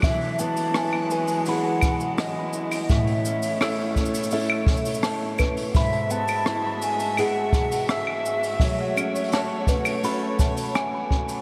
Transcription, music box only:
X:1
M:4/4
L:1/8
Q:1/4=84
K:E
V:1 name="Music box"
e z g B b z3 | z2 e' z e z a B | b z4 z e' z | e z a B b a g z |]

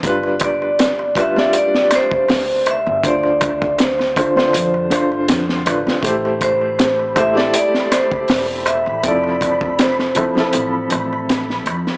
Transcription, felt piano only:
X:1
M:4/4
L:1/16
Q:"Swing 16ths" 1/4=80
K:Am
V:1 name="Felt piano"
[G,DFB]6 [G,DFB] [G,DFd]8- [G,DFd] | [D,DFc]6 [D,DFc] [D,DFc]3 [D,DFc]4 [D,DFB]2 | [A,EGc]6 [A,EGc] [A,EGd]8- [A,EGd] | [F,CEA]6 [F,CEA] [F,CEA]8- [F,CEA] |]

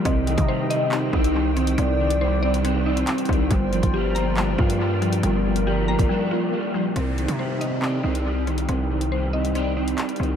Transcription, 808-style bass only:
X:1
M:4/4
L:1/16
Q:1/4=139
K:Cm
V:1 name="808-style bass" clef=bass
C,,3 C,6- C, C,,6 | C,,12 z2 C,,2 | G,,,3 G,,,6- G,,, G,,6 | G,,,6- G,,, G,,, z8 |
C,,3 C,6- C, C,,6 | C,,12 z2 C,,2 |]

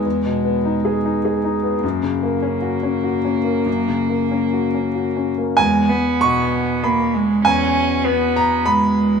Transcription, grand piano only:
X:1
M:3/4
L:1/8
Q:1/4=99
K:Elyd
V:1 name="Grand piano"
z6 | z6 | z6 | g2 c'2 b2 |
g3 a b2 |]
V:2 name="Grand piano"
(3[E,,B,] B,, B, (3D G D (3G D B, | (3F,, C, A, (3C F C (3F C A, | (3F,, C, A, (3C F C (3F C A, | E,,2 B,,4 |
E,,2 B,4 |]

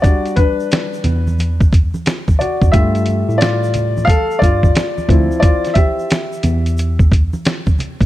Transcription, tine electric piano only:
X:1
M:4/4
L:1/16
Q:"Swing 16ths" 1/4=89
K:Ephr
V:1 name="Tine electric piano" clef=bass
z6 E,,4- E,, z4 ^F,, | G,,3 A,,4- A,, z2 G,,2 z2 D,, z | z6 E,,4- E,, z4 D,, |]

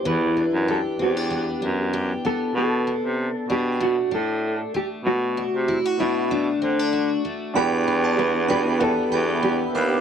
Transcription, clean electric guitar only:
X:1
M:4/4
L:1/16
Q:"Swing 16ths" 1/4=96
K:Em
V:1 name="Clean electric guitar"
B4 A2 G6 z2 A2 | A6 G2 F2 A4 G2 | F6 E2 D6 z2 | G4 B2 B2 A4 G3 z |]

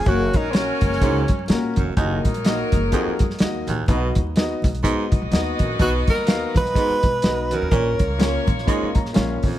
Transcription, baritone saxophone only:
X:1
M:4/4
L:1/8
Q:"Swing" 1/4=125
K:Cblyd
V:1 name="Baritone saxophone" clef=bass
G,, z3 A,, z2 G,, | E,, z3 F,, z2 E,, | C, z3 A,, z2 G,, | C, z3 A,, z2 G,, |
B,, z3 A,, z2 F,, |]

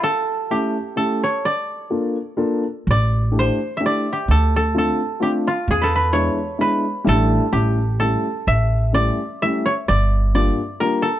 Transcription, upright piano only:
X:1
M:3/4
L:1/8
Q:1/4=128
K:Aphr
V:1 name="Upright piano"
z2 [A,^CEG] z [A,CEG] z | z2 [B,DFA] z [B,DFA] z | z2 [A,DEG] z [A,DEG] z | z2 [A,CDF] z [A,CDF] z |
z2 [^G,=B,DE] z [G,B,DE] z | [G,A,DE]2 [G,A,^CE] z [G,A,CE] z | z2 [G,A,^CE] z [G,A,CE] z | z2 [G,B,DF] z [G,B,DF] z |]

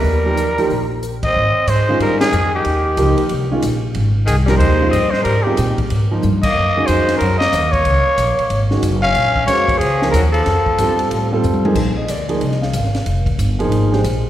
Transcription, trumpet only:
X:1
M:4/4
L:1/8
Q:"Swing" 1/4=184
K:Eb
V:1 name="Trumpet"
B6 z e- | [K:Gblyd] e2 c2 B A2 =G- | =G4- G z3 | z2 A B c2 e c |
B =G2 z4 e- | e2 c2 B e2 d- | d4- d z2 f- | f2 d2 A2 B =A- |
=A6 z2 | [K:Bbmix] z8 | z8 |]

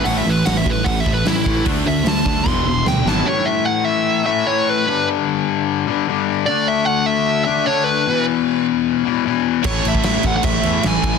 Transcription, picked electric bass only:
X:1
M:4/4
L:1/8
Q:1/4=150
K:Dlyd
V:1 name="Picked electric bass" clef=bass
A,,, A,,, A,,, A,,, A,,, A,,, A,,, A,,, | D,, D,, D,, D,, E,,, E,,, D,, G,,, | z8 | z8 |
z8 | z8 | A,,, A,,, A,,, A,,, A,,, E,, A,,, A,,, |]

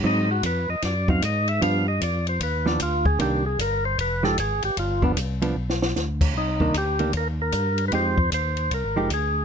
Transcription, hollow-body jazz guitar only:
X:1
M:4/4
L:1/8
Q:"Swing" 1/4=152
K:Cm
V:1 name="Hollow-body jazz guitar"
[_G,CE] z4 [G,CE] z2 | [F,=B,D] z4 [F,B,D] z2 | [E,B,D] z4 [F,A,EG] z2 | z [F,=B,D] z [F,B,D] z4 |
z [E,B,D] z [E,B,D] z4 | [F,A,EG] z4 [F,A,EG] z2 |]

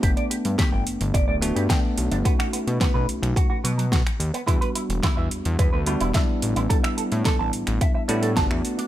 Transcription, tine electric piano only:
X:1
M:4/4
L:1/8
Q:1/4=108
K:Amix
V:1 name="Tine electric piano"
[A,B,D]4- [A,B,D] [A,B,DF] [A,B,D]2 | [A,C^DF]4- [A,CDF] z3 | [G,B,DF]4- [G,B,DF] [G,B,DF] [G,B,DE]2 | [G,B,DE]4- [G,B,DE] [G,B,DE] [A,B,DF]2 |]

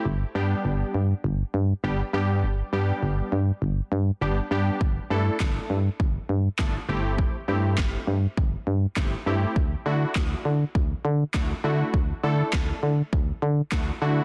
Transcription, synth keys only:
X:1
M:4/4
L:1/8
Q:1/4=101
K:G
V:1 name="Synth keys"
z [G,B,DG]2 z3 [G,B,DG] [G,B,DG] | z [G,B,DG]2 z3 [G,B,DG] [G,B,DG] | z [A,DEA]2 z3 [A,DEA] [A,CEG]- | [A,CEG] [A,CEG]2 z3 [A,CEG] [A,CEG] |
z [A,DEF]2 z3 [A,DEF] [A,DEF] | z [A,DEA]2 z3 [A,DEF] [A,DEF] |]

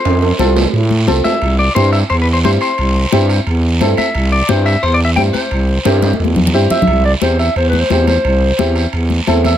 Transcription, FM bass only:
X:1
M:4/4
L:1/8
Q:1/4=176
K:C
V:1 name="FM bass" clef=bass
F,,2 C,,2 A,,2 C,, z | C,,2 G,,2 E,,2 G,, z | C,,2 G,,2 E,,2 G,, z | C,,2 G,,2 E,,2 G,, z |
C,,2 G,,2 E,,2 G,, z | C,,2 E,,2 E,,2 E,,2 | C,,2 E,,2 E,,2 E,,2 |]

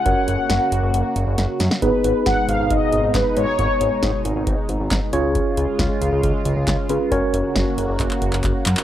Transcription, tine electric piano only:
X:1
M:4/4
L:1/8
Q:1/4=136
K:G#dor
V:1 name="Tine electric piano"
[CFAcf]8 | [B,DGB]8- | [B,DGB]6- [B,DGB] [CEGc]- | [CEGc]6- [CEGc] [CEGB] |
[CFAc]8 |]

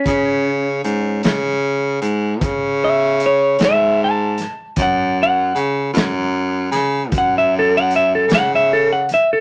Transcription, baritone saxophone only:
X:1
M:12/8
L:1/8
Q:3/8=51
K:C#dor
V:1 name="Baritone saxophone" clef=bass
C,2 G,, C,2 G,, C,3 G,,2 z | F,,2 C, F,,2 C, F,,3 C,2 z |]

